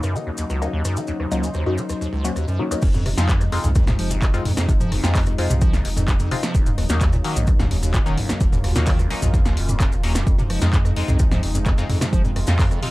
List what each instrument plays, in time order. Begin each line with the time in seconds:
Already playing: analog synth pad C#3 F#3 A#3 D#4
0.03 acid bass F#2, cross-stick, maracas
0.15 acid bass F#3, maracas
0.27 acid bass D#2
0.37 acid bass D#2, maracas
0.50 acid bass C#2, cross-stick, maracas
0.62 acid bass D#2, synth stab F#3 A#3 C#4 D#4, maracas
0.73 acid bass D#2
0.85 acid bass F#2, cross-stick, maracas
0.96 acid bass F#3, analog synth pad C5, maracas
1.07 acid bass D#2, maracas
1.20 acid bass D#2, cross-stick
1.31 acid bass C#2, synth stab F#3 A#3 C#4 D#4, maracas
1.43 acid bass D#2, maracas
1.54 acid bass D#2, cross-stick, maracas
1.66 acid bass F#2, synth stab F#3 A#3 C#4 D#4
1.78 acid bass F#3, maracas
1.89 acid bass D#2, cross-stick, maracas
2.01 acid bass D#2, maracas
2.13 acid bass C#2
2.24 acid bass D#2, synth stab F#3 A#3 C#4 F#4, maracas
2.36 acid bass D#2, cross-stick, maracas
2.48 acid bass F#2, maracas
2.59 acid bass F#3, synth stab F#3 A#3 C#4 D#4
2.71 acid bass D#2, synth stab F#3 A#3 C#4 D#4, cross-stick, maracas
2.82 sub bass F1, acid bass F2, analog synth pad C3 F3 G#3 D#4, kick, closed hi-hat, crash, maracas
2.94 acid bass F2, closed hi-hat, mid tom, maracas
3.06 acid bass C3, cross-stick, open hi-hat
3.17 sub bass F2, acid bass F3, synth stab G#3 C4 D#4 F4, snare, maracas
3.29 acid bass F1, kick, clap, closed hi-hat, maracas
3.41 acid bass F2, cross-stick, closed hi-hat, maracas
3.52 acid bass F2, synth stab G#3 C4 D#4 F4, open hi-hat
3.64 sub bass C2, acid bass F2, closed hi-hat, mid tom, maracas
3.75 acid bass F2, kick, cross-stick, closed hi-hat, maracas
3.87 acid bass C3, snare, closed hi-hat, mid tom, maracas
3.99 sub bass F1, acid bass F3, open hi-hat
4.11 acid bass F1, closed hi-hat, maracas
4.22 acid bass F2, kick, cross-stick, clap, closed hi-hat, maracas
4.34 sub bass F1, acid bass F2, synth stab G#3 C4 D#4 F4, closed hi-hat, maracas
4.45 acid bass F2, mid tom, open hi-hat
4.57 acid bass F2, cross-stick, snare, maracas
4.69 sub bass F1, acid bass C3, kick, closed hi-hat, maracas
4.80 acid bass F3, closed hi-hat, mid tom, maracas
4.92 acid bass F1, cross-stick, open hi-hat
5.04 acid bass F2, sub bass F2, synth stab G#3 C4 D#4 F4, snare, maracas
5.15 acid bass F2, kick, clap, open hi-hat, maracas
5.26 acid bass F2, cross-stick, maracas
5.38 acid bass F2, synth stab G#3 C4 D#4 F4, open hi-hat
5.50 sub bass C2, acid bass C3, closed hi-hat, mid tom, maracas
5.61 acid bass F3, kick, cross-stick, closed hi-hat, maracas
5.73 acid bass F1, snare, closed hi-hat, maracas
5.85 sub bass F1, acid bass F2, open hi-hat
5.97 acid bass F2, closed hi-hat, mid tom, maracas
6.08 acid bass F2, kick, cross-stick, clap, closed hi-hat, maracas
6.20 sub bass F1, acid bass F2, closed hi-hat, maracas
6.31 acid bass C3, synth stab G#3 C4 D#4 F4, open hi-hat
6.43 acid bass F3, cross-stick, snare, maracas
6.55 sub bass D#1, acid bass D#1, analog synth pad C#3 F#3 A#3, kick, closed hi-hat, maracas
6.66 acid bass D#2, closed hi-hat, mid tom, maracas
6.78 acid bass D#2, cross-stick, open hi-hat
6.89 acid bass D#2, sub bass D#2, synth stab F#3 A#3 C#4 D#4, snare, closed hi-hat, maracas
7.01 acid bass D#2, kick, clap, closed hi-hat, maracas
7.13 acid bass A#2, cross-stick, closed hi-hat, maracas
7.24 acid bass D#3, synth stab F#3 A#3 C#4 D#4, open hi-hat
7.36 acid bass D#1, sub bass A#1, closed hi-hat, mid tom, maracas
7.47 acid bass D#2, kick, cross-stick, closed hi-hat, maracas
7.59 acid bass D#2, snare, closed hi-hat, mid tom, maracas
7.71 sub bass D#1, acid bass D#2, open hi-hat
7.83 acid bass D#2, closed hi-hat, maracas
7.94 acid bass A#2, kick, cross-stick, clap, closed hi-hat, maracas
8.06 sub bass D#1, acid bass D#3, synth stab F#3 A#3 C#4 D#4, closed hi-hat, maracas
8.17 acid bass D#1, mid tom, open hi-hat
8.29 acid bass D#2, cross-stick, snare, closed hi-hat, maracas
8.40 sub bass D#1, acid bass D#2, analog synth pad F4, kick, closed hi-hat, maracas
8.52 acid bass D#2, closed hi-hat, mid tom, maracas
8.64 acid bass D#2, cross-stick, open hi-hat
8.75 sub bass D#2, acid bass A#2, synth stab F#3 A#3 C#4 D#4, snare, maracas
8.86 acid bass D#3, kick, clap, open hi-hat, maracas
8.99 acid bass D#1, cross-stick, closed hi-hat, maracas
9.10 acid bass D#2, synth stab F#3 A#3 C#4 D#4, open hi-hat
9.22 sub bass A#1, acid bass D#2, closed hi-hat, mid tom, maracas
9.34 acid bass D#2, kick, cross-stick, closed hi-hat, maracas
9.45 acid bass D#2, snare, closed hi-hat, maracas
9.57 sub bass D#1, acid bass F#2, open hi-hat
9.69 acid bass F2, closed hi-hat, mid tom, maracas
9.80 acid bass F#2, kick, cross-stick, clap, closed hi-hat, maracas
9.92 sub bass D#1, acid bass D#2, closed hi-hat, maracas
10.03 acid bass D#2, synth stab F#3 A#3 C#4 D#4, open hi-hat
10.15 acid bass F#2, cross-stick, snare, maracas
10.27 sub bass F1, acid bass F2, analog synth pad C3 F3 G#3 D#4, kick, closed hi-hat, maracas
10.38 acid bass C3, closed hi-hat, mid tom, maracas
10.50 acid bass F3, cross-stick, open hi-hat
10.61 sub bass F2, acid bass F2, synth stab G#3 C4 D#4 F4, snare, closed hi-hat, maracas
10.73 acid bass F2, kick, clap, closed hi-hat, maracas
10.85 acid bass F2, cross-stick, closed hi-hat, maracas
10.96 acid bass F2, synth stab G#3 C4 D#4 F4, open hi-hat
11.08 sub bass C2, acid bass F2, closed hi-hat, mid tom, maracas
11.19 acid bass C3, kick, cross-stick, closed hi-hat, maracas
11.31 acid bass F3, snare, closed hi-hat, mid tom, maracas
11.43 sub bass F1, acid bass F2, open hi-hat
11.55 acid bass F2, closed hi-hat, maracas
11.66 acid bass F2, kick, cross-stick, clap, closed hi-hat, maracas
11.78 sub bass F1, acid bass F2, synth stab G#3 C4 D#4 F4, closed hi-hat, maracas
11.89 acid bass F2, mid tom, open hi-hat
12.01 acid bass C3, cross-stick, snare, closed hi-hat, maracas
12.13 sub bass F1, acid bass F3, analog synth pad F4, kick, closed hi-hat, maracas
12.24 acid bass F2, closed hi-hat, mid tom, maracas
12.36 acid bass F2, cross-stick, open hi-hat
12.47 acid bass F2, sub bass F2, synth stab G#3 C4 D#4 F4, snare, closed hi-hat, maracas
12.59 acid bass F2, kick, clap, open hi-hat, maracas
12.71 acid bass F2, cross-stick, closed hi-hat, maracas
12.82 acid bass C3, synth stab G#3 C4 D#4 F4, open hi-hat